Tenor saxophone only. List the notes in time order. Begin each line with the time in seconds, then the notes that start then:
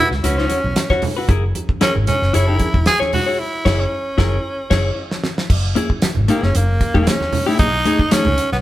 0.23 C#4
1.82 C#4
2.08 C#4
2.35 E4
2.87 G#4
3.14 F#4
3.33 F#4
3.39 E4
3.80 C#4
6.29 A#3
6.43 C#4
6.56 A#3
7.08 C#4
7.48 E4
7.59 D#4
8.12 C#4
8.52 B3